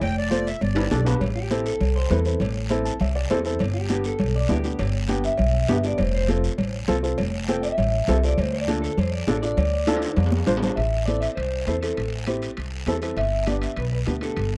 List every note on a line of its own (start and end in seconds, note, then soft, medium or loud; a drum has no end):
0.01 0.49 F1 loud
0.01 0.16 G5 loud
0.01 cowbell loud
0.01 high conga soft
0.01 long guiro medium
0.18 0.48 D5 medium
0.30 0.47 F4 medium
0.30 0.47 A4 medium
0.30 0.47 C5 medium
0.30 cowbell medium
0.30 high conga medium
0.30 short guiro medium
0.47 0.61 E5 medium
0.47 short guiro medium
0.61 0.85 G1 medium
0.61 1.04 D5 medium
0.61 cowbell medium
0.61 high conga soft
0.61 low conga medium
0.61 long guiro medium
0.75 0.81 D4 medium
0.75 0.81 G4 medium
0.75 0.81 B4 medium
0.75 high timbale loud
0.91 1.15 B1 medium
0.91 0.97 D4 medium
0.91 0.97 G4 medium
0.91 0.97 A4 medium
0.91 cowbell medium
0.91 high conga medium
0.91 low timbale medium
0.91 short guiro medium
1.05 1.21 D4 medium
1.05 1.21 G4 medium
1.05 1.21 B4 medium
1.05 low timbale medium
1.05 short guiro medium
1.21 1.69 A1 medium
1.21 cowbell loud
1.21 high conga soft
1.21 low conga medium
1.21 long guiro medium
1.35 1.65 G4 medium
1.50 1.72 C4 medium
1.50 1.72 E4 medium
1.50 1.72 A4 medium
1.50 cowbell medium
1.50 high conga medium
1.50 short guiro medium
1.66 1.95 A4 medium
1.66 short guiro medium
1.80 2.05 C2 medium
1.80 cowbell medium
1.80 high conga soft
1.80 low conga medium
1.80 long guiro medium
1.96 2.10 C5 medium
2.10 2.35 E2 medium
2.10 2.16 C4 medium
2.10 2.16 E4 medium
2.10 2.40 A4 medium
2.10 2.16 B4 medium
2.10 cowbell medium
2.10 high conga medium
2.10 low conga medium
2.10 low timbale medium
2.10 short guiro medium
2.25 2.41 C4 medium
2.25 2.41 E4 medium
2.25 2.42 B4 medium
2.25 short guiro medium
2.40 2.88 A1 loud
2.40 cowbell loud
2.40 high conga soft
2.40 low conga medium
2.40 long guiro medium
2.70 2.91 C4 medium
2.70 2.91 E4 medium
2.70 2.92 A4 loud
2.70 cowbell medium
2.70 high conga medium
2.70 short guiro medium
2.85 2.99 A5 medium
2.85 short guiro medium
3.00 3.24 C2 medium
3.00 3.15 E5 medium
3.00 cowbell medium
3.00 high conga soft
3.00 low conga medium
3.00 long guiro medium
3.16 3.29 D5 medium
3.30 3.55 E2 medium
3.30 3.35 C4 medium
3.30 3.36 E4 medium
3.30 3.36 A4 loud
3.30 3.58 C5 medium
3.30 cowbell medium
3.30 high conga medium
3.30 low timbale medium
3.30 short guiro medium
3.45 3.60 C4 medium
3.45 3.60 E4 medium
3.45 3.60 A4 medium
3.45 short guiro medium
3.59 4.08 G1 medium
3.59 cowbell loud
3.59 high conga soft
3.59 low conga medium
3.59 long guiro medium
3.74 4.04 G4 medium
3.89 4.11 B3 medium
3.89 4.11 D4 medium
3.89 4.11 G4 medium
3.89 cowbell medium
3.89 high conga medium
3.89 short guiro medium
4.04 4.34 A4 medium
4.04 short guiro medium
4.19 4.44 B1 medium
4.19 cowbell medium
4.19 high conga soft
4.19 low conga medium
4.19 long guiro medium
4.36 4.50 D5 medium
4.49 4.74 D2 medium
4.49 4.54 B3 medium
4.49 4.55 D4 medium
4.49 4.55 E4 medium
4.49 4.79 G4 medium
4.49 cowbell medium
4.49 high conga medium
4.49 low conga medium
4.49 low timbale medium
4.49 short guiro medium
4.64 4.80 B3 medium
4.64 4.80 D4 medium
4.64 4.81 G4 medium
4.64 short guiro medium
4.79 5.27 G1 loud
4.79 cowbell loud
4.79 high conga soft
4.79 long guiro medium
5.08 5.30 B3 medium
5.08 5.30 D4 medium
5.08 5.30 G4 medium
5.08 5.24 G5 medium
5.08 cowbell medium
5.08 high conga medium
5.08 short guiro medium
5.24 5.83 E5 loud
5.24 short guiro medium
5.38 5.63 B1 medium
5.38 cowbell medium
5.38 high conga soft
5.38 low conga medium
5.38 long guiro medium
5.68 5.93 G1 medium
5.68 5.74 B3 loud
5.68 5.74 D4 medium
5.68 5.74 G4 loud
5.68 cowbell medium
5.68 high conga medium
5.68 low timbale medium
5.68 short guiro medium
5.84 5.99 B3 medium
5.84 5.99 D4 medium
5.84 5.99 G4 medium
5.84 6.01 D5 medium
5.84 short guiro medium
5.98 6.47 F1 medium
5.98 6.14 C5 medium
5.98 cowbell loud
5.98 high conga soft
5.98 low conga medium
5.98 long guiro medium
6.15 6.29 C5 medium
6.28 6.50 C4 medium
6.28 6.50 F4 medium
6.28 6.50 A4 medium
6.28 cowbell medium
6.28 high conga medium
6.28 short guiro medium
6.44 short guiro medium
6.58 6.83 A1 medium
6.58 cowbell medium
6.58 high conga soft
6.58 low conga medium
6.58 long guiro medium
6.88 7.12 C2 medium
6.88 6.93 C4 medium
6.88 6.94 F4 medium
6.88 6.94 A4 loud
6.88 cowbell medium
6.88 high conga medium
6.88 low conga medium
6.88 short guiro medium
7.03 7.19 C4 medium
7.03 7.19 F4 medium
7.03 7.19 A4 medium
7.03 short guiro medium
7.18 7.67 F1 medium
7.18 cowbell loud
7.18 high conga soft
7.18 low conga medium
7.18 long guiro medium
7.48 7.69 C4 medium
7.48 7.69 F4 medium
7.48 7.70 A4 medium
7.48 7.62 G5 loud
7.48 cowbell medium
7.48 high conga medium
7.48 short guiro medium
7.63 8.21 E5 medium
7.63 short guiro medium
7.78 8.02 A1 medium
7.78 cowbell medium
7.78 high conga soft
7.78 low conga medium
7.78 long guiro medium
8.08 8.32 C2 medium
8.08 8.13 C4 medium
8.08 8.14 F4 medium
8.08 8.14 A4 loud
8.08 cowbell medium
8.08 high conga medium
8.08 low conga medium
8.08 low timbale medium
8.08 short guiro medium
8.23 8.38 C4 medium
8.23 8.38 F4 medium
8.23 8.38 A4 medium
8.23 8.38 D5 medium
8.23 short guiro medium
8.38 8.86 D2 loud
8.38 8.52 C5 medium
8.38 cowbell loud
8.38 high conga soft
8.38 low conga medium
8.38 long guiro medium
8.54 8.68 D5 medium
8.68 8.89 D4 medium
8.68 8.89 F4 medium
8.68 8.89 A4 medium
8.68 cowbell medium
8.68 high conga medium
8.68 short guiro medium
8.82 8.98 A4 loud
8.82 short guiro medium
8.97 9.21 F2 medium
8.97 9.12 C5 loud
8.97 cowbell medium
8.97 high conga soft
8.97 low conga medium
8.97 long guiro medium
9.12 9.41 D5 medium
9.27 9.51 A1 medium
9.27 9.33 D4 medium
9.27 9.33 F4 medium
9.27 9.33 A4 medium
9.27 cowbell medium
9.27 high conga medium
9.27 low timbale medium
9.27 short guiro medium
9.42 9.58 D4 medium
9.42 9.58 F4 medium
9.42 9.59 A4 medium
9.42 10.29 D5 medium
9.42 short guiro medium
9.57 10.05 D2 loud
9.57 cowbell loud
9.57 high conga soft
9.57 low conga medium
9.57 long guiro medium
9.87 10.08 D4 medium
9.87 10.08 F4 medium
9.87 10.08 A4 loud
9.87 cowbell medium
9.87 high conga medium
9.87 high timbale loud
9.87 short guiro medium
9.97 high timbale loud
10.02 short guiro medium
10.06 high timbale medium
10.16 10.41 F2 medium
10.16 cowbell medium
10.16 high conga soft
10.16 low conga medium
10.16 low timbale medium
10.16 long guiro medium
10.26 low timbale medium
10.32 high conga loud
10.37 low timbale medium
10.47 10.71 A1 medium
10.47 10.52 D4 medium
10.47 10.52 F4 medium
10.47 10.53 C5 loud
10.47 cowbell medium
10.47 low conga medium
10.47 short guiro medium
10.57 low timbale loud
10.62 10.77 D4 medium
10.62 10.78 F4 medium
10.62 10.78 C5 medium
10.62 low conga medium
10.62 short guiro medium
10.68 low timbale medium
10.76 11.25 A1 medium
10.76 11.05 E5 medium
10.76 high conga soft
10.76 high timbale medium
10.76 long guiro medium
11.06 11.28 C4 medium
11.06 11.28 E4 medium
11.06 11.29 A4 medium
11.06 11.20 D5 medium
11.06 high conga medium
11.06 high timbale medium
11.06 short guiro medium
11.21 11.26 E5 medium
11.21 high timbale medium
11.21 short guiro medium
11.35 11.61 C2 medium
11.35 11.64 C5 medium
11.35 high conga soft
11.35 high timbale medium
11.35 long guiro medium
11.66 11.91 E2 medium
11.66 11.73 C4 medium
11.66 11.73 E4 medium
11.66 11.73 A4 medium
11.66 11.76 C5 medium
11.66 high conga medium
11.66 high timbale medium
11.66 short guiro medium
11.81 11.98 C4 medium
11.81 11.98 E4 soft
11.81 12.09 A4 medium
11.81 11.98 A4 medium
11.81 high timbale medium
11.81 short guiro medium
11.97 12.45 A1 medium
11.97 high conga soft
11.97 high timbale medium
11.97 long guiro medium
12.27 12.48 C4 medium
12.27 12.48 E4 medium
12.27 12.48 G4 medium
12.27 high conga medium
12.27 high timbale medium
12.27 short guiro medium
12.42 high timbale medium
12.42 short guiro medium
12.57 12.81 C2 medium
12.57 high conga soft
12.57 high timbale medium
12.57 long guiro medium
12.86 13.11 E2 medium
12.86 12.92 C4 medium
12.86 12.93 E4 medium
12.86 12.93 A4 medium
12.86 high conga medium
12.86 high timbale medium
12.86 low timbale medium
12.86 short guiro medium
13.02 13.17 C4 medium
13.02 13.17 E4 medium
13.02 13.17 A4 medium
13.02 high timbale medium
13.02 short guiro medium
13.16 13.65 G1 medium
13.16 13.45 E5 loud
13.16 high conga soft
13.16 high timbale medium
13.16 long guiro medium
13.46 13.68 B3 medium
13.46 13.68 D4 medium
13.46 13.68 G4 medium
13.46 13.53 D5 medium
13.46 high conga medium
13.46 high timbale medium
13.46 short guiro medium
13.62 13.77 E5 medium
13.62 high timbale medium
13.62 short guiro medium
13.76 14.01 B1 medium
13.76 13.83 B4 medium
13.76 high conga soft
13.76 high timbale medium
13.76 long guiro medium
13.92 13.97 B4 medium
14.06 14.31 D2 medium
14.06 14.12 B3 medium
14.06 14.12 D4 medium
14.06 14.12 G4 medium
14.06 14.12 B4 medium
14.06 high conga medium
14.06 high timbale medium
14.06 short guiro medium
14.21 14.37 B3 soft
14.21 14.38 D4 soft
14.21 14.38 G4 medium
14.21 14.50 A4 medium
14.21 high timbale medium
14.21 short guiro medium
14.37 14.57 G1 medium
14.37 high conga soft
14.37 high timbale medium
14.37 long guiro medium